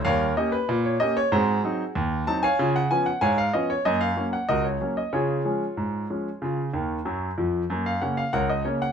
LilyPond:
<<
  \new Staff \with { instrumentName = "Grand piano" } { \time 2/4 \key fis \major \tempo 4 = 94 <ais' cis'' eis''>8 dis''16 b'8 cis''16 dis''16 cis''16 | <fis' gis' bis'>4 r8 a''16 <cis'' eis'' gis''>16~ | <cis'' eis'' gis''>16 fis''16 gis''16 fis''16 <cis'' eis'' gis''>16 eis''16 dis''16 cis''16 | dis''16 eis''8 fis''16 <fis' ais' dis''>16 cis''8 dis''16 |
<eis' gis' cis''>2~ | <eis' gis' cis''>4 r4 | r16 eis''16 fis''16 eis''16 <ais' cis'' fis''>16 dis''16 cis''16 fis''16 | }
  \new Staff \with { instrumentName = "Grand piano" } { \clef bass \time 2/4 \key fis \major <dis, g>8 <ais cis' g'>8 ais,8 <ais cis' g'>8 | <gis, bis>8 <fis bis dis'>8 dis,8 <fis bis dis'>8 | <cis eis'>8 <eis b cis'>8 gis,8 <eis b cis'>8 | <fis, ais>8 <fis ais cis'>8 cis,8 <fis ais cis'>8 |
cis8 <eis gis cis'>8 gis,8 <eis gis cis'>8 | <cis eis'>8 <dis, dis>8 <fis, fis>8 <eis, eis>8 | <fis, ais>8 <cis ais cis'>8 cis,8 <cis ais cis'>8 | }
>>